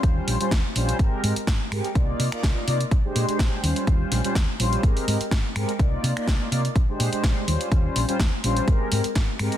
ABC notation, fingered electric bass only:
X:1
M:4/4
L:1/8
Q:"Swing 16ths" 1/4=125
K:Eb
V:1 name="Fingered electric bass" clef=bass
E,, B,,, E,, B,,, A,,, A,, A,,, A,, | C,, C, C,, C, B,,, B,, B,,, E,, | E,, B,,, E,, B,,, A,,, A,, A,,, A,, | C,, C, C,, C, B,,, B,, B,,, E,, |
E,, B,,, E,, B,,, A,,, A,, A,,, A,, |]